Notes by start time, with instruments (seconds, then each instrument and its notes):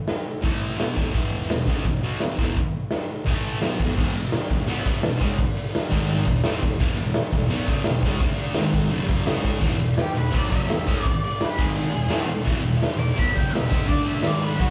0.07 snare, open hi-hat, tambourine
0.24 tambourine
0.42 distorted electric guitar A2 E3 A3, kick, open hi-hat, tambourine
0.61 tambourine
0.77 distorted electric guitar B2 F#3 B3, snare, open hi-hat, tambourine
0.96 distorted electric guitar E2 B2 E3, kick
1.14 distorted electric guitar E2 B2 E3, kick, open hi-hat, tambourine
1.34 tambourine
1.49 distorted electric guitar E2 B2, snare, open hi-hat, tambourine
1.67 distorted electric guitar C#3 G#3 C#4, kick, tambourine
1.84 distorted electric guitar E2 B2, kick, open hi-hat, tambourine
2.03 distorted electric guitar B2 F#3 B3, tambourine
2.20 muted distorted electric guitar stroke, snare, open hi-hat, tambourine
2.38 distorted electric guitar E2 B2 E3, kick
2.55 kick, open hi-hat, tambourine
2.73 tambourine
2.91 snare, open hi-hat, tambourine
3.09 tambourine
3.25 distorted electric guitar A2 E3 A3, kick, open hi-hat
3.45 tambourine
3.61 distorted electric guitar B2 F#3 B3, snare, open hi-hat, tambourine
3.79 distorted electric guitar E2 B2 E3, kick
3.89 snare
3.97 distorted electric guitar E2 B2 E3, kick, crash
4.15 distorted electric guitar E2 B2, ride
4.24 snare
4.32 snare, ride
4.50 distorted electric guitar E2 B2, kick, ride
4.60 snare
4.67 distorted electric guitar B2 F#3 B3, ride
4.86 distorted electric guitar F#2 C#3 F#3, kick, ride
5.03 distorted electric guitar E2 B2, snare, ride
5.19 distorted electric guitar C#3 G#3 C#4, kick, ride
5.38 kick, ride
5.57 ride
5.66 snare
5.75 snare, ride
5.90 distorted electric guitar G#2 D#3 G#3, kick, ride
6.01 snare
6.09 ride
6.26 distorted electric guitar E2 B2, kick, ride
6.43 distorted electric guitar A2 E3 A3, snare, ride
6.60 distorted electric guitar E2 B2, kick, ride
6.78 distorted electric guitar E2 B2 E3, kick, crash
6.97 distorted electric guitar E2 B2, ride, tambourine
7.14 snare, ride, tambourine
7.32 distorted electric guitar E2 B2, kick, ride, tambourine
7.40 snare
7.49 distorted electric guitar B2 F#3 B3, ride
7.54 tambourine
7.62 tambourine
7.67 distorted electric guitar F#2 C#3 F#3, kick, ride
7.72 tambourine
7.84 distorted electric guitar E2 B2, snare, ride, tambourine
8.02 distorted electric guitar C#3 G#3 C#4, kick, ride
8.12 tambourine
8.20 distorted electric guitar D3 A3 D4, kick, ride
8.33 tambourine
8.38 ride, tambourine
8.51 snare, ride, tambourine
8.56 distorted electric guitar G#2 D#3 G#3, tambourine
8.68 tambourine
8.74 kick, ride, tambourine
8.83 snare
8.91 distorted electric guitar F#2 C#3 F#3, ride
9.09 kick, ride, tambourine
9.20 tambourine
9.25 distorted electric guitar C#3 G#3 C#4, snare, ride, tambourine
9.38 tambourine
9.44 kick, ride, tambourine
9.57 distorted electric guitar E2, tambourine
9.61 distorted electric guitar B2 E3, kick, ride
9.78 distorted electric guitar E2 B2, ride
9.83 tambourine
9.98 lead electric guitar G4, snare, ride, tambourine
10.15 distorted electric guitar E2 B2, lead electric guitar B4, ride
10.19 tambourine
10.26 snare, tambourine
10.31 distorted electric guitar B2 F#3 B3, kick, ride
10.35 lead electric guitar D5, tambourine
10.48 distorted electric guitar F#2 C#3 F#3, lead electric guitar E5, kick, ride
10.53 tambourine
10.61 tambourine
10.67 distorted electric guitar E2 B2, snare, ride
10.71 tambourine
10.81 tambourine
10.85 distorted electric guitar C#3 G#3 C#4, kick, ride
10.89 tambourine
11.01 lead electric guitar D5, ride
11.05 kick
11.23 lead electric guitar D5, ride, tambourine
11.32 snare
11.41 lead electric guitar B4, snare, ride, tambourine
11.50 tambourine
11.57 distorted electric guitar G#2 D#3 G#3, kick, ride, tambourine
11.61 lead electric guitar G#4
11.68 snare, tambourine
11.75 ride
11.93 distorted electric guitar E2 B2, ride, tambourine
12.04 tambourine
12.09 distorted electric guitar A2 E3 A3, snare, ride
12.13 tambourine
12.26 distorted electric guitar E2 B2, ride
12.31 tambourine
12.43 distorted electric guitar E2 B2 E3, kick, crash
12.60 distorted electric guitar E2 B2
12.65 ride, tambourine
12.74 snare
12.83 snare, ride, tambourine
12.93 distorted electric guitar E2 B2, tambourine
12.99 lead electric guitar D6, ride, tambourine
13.10 tambourine
13.14 distorted electric guitar B2 F#3 B3
13.18 lead electric guitar B5, kick, ride, tambourine
13.31 distorted electric guitar F#2 C#3 F#3
13.36 lead electric guitar G5, kick, ride, tambourine
13.46 tambourine
13.51 distorted electric guitar E2 B2, lead electric guitar E5
13.55 snare, ride, tambourine
13.64 tambourine
13.68 distorted electric guitar C#3 G#3 C#4, kick
13.72 ride, tambourine
13.86 distorted electric guitar D3 A3 D4, lead electric guitar D5, kick, ride
14.01 tambourine
14.06 lead electric guitar E5, ride, tambourine
14.15 snare
14.23 distorted electric guitar G#2 D#3 G#3, snare, ride, tambourine
14.27 lead electric guitar D5
14.35 tambourine
14.42 lead electric guitar B4, ride, tambourine
14.54 distorted electric guitar F#2, tambourine
14.58 distorted electric guitar C#3 F#3, lead electric guitar F#4, kick, ride
14.63 tambourine